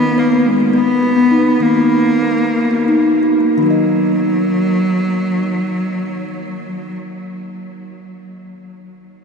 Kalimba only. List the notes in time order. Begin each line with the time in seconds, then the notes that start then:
Already playing: D#3 B3
0.18 B4
0.32 B3
0.60 F#4
0.73 B3
1.03 F#4
1.16 B3
1.31 D#4
1.60 D#3 A#3
1.75 F#4
2.06 A#3
2.23 A#4
2.38 A#3
2.71 F#4
2.88 D#4
3.23 F#4
3.41 A#3
3.58 D#3 D#4
3.63 F#4 A#4
3.70 D#5